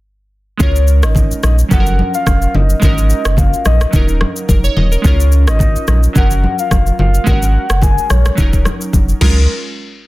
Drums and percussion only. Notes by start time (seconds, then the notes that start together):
0.60 kick, low conga, shaker
0.76 shaker
0.88 shaker
1.03 cross-stick, shaker
1.15 kick, low conga, shaker
1.31 shaker
1.43 cross-stick, high conga, shaker
1.59 shaker
1.71 kick, low conga, shaker
1.86 shaker
1.99 high conga
2.14 shaker
2.27 kick, cross-stick, high conga, shaker
2.42 shaker
2.55 high conga, low conga
2.70 shaker
2.82 kick, low conga, shaker
2.98 shaker
3.10 shaker
3.25 cross-stick, shaker
3.37 kick, low conga, shaker
3.54 shaker
3.65 cross-stick, high conga, shaker
3.81 cross-stick, shaker
3.93 kick, low conga, shaker
4.08 shaker
4.21 cross-stick, high conga
4.36 shaker
4.49 kick, high conga, shaker
4.64 shaker
4.77 high conga, low conga
4.92 shaker
5.04 kick, low conga, shaker
5.20 shaker
5.32 shaker
5.47 cross-stick, shaker
5.59 kick, low conga, shaker
5.76 shaker
5.88 cross-stick, high conga, shaker
6.03 shaker
6.16 kick, low conga, shaker
6.31 shaker
6.44 high conga
6.59 shaker
6.71 kick, cross-stick, high conga, shaker
6.86 shaker
6.99 high conga, low conga
7.14 shaker
7.27 kick, low conga, shaker
7.43 high conga, shaker
7.70 cross-stick, shaker
7.82 kick, low conga, shaker
7.98 shaker
8.10 cross-stick, high conga, shaker
8.26 cross-stick, shaker
8.38 kick, low conga, shaker
8.53 kick, shaker
8.65 cross-stick, high conga, shaker
8.81 shaker
8.93 kick, high conga, shaker
9.09 shaker
9.21 kick, crash, high conga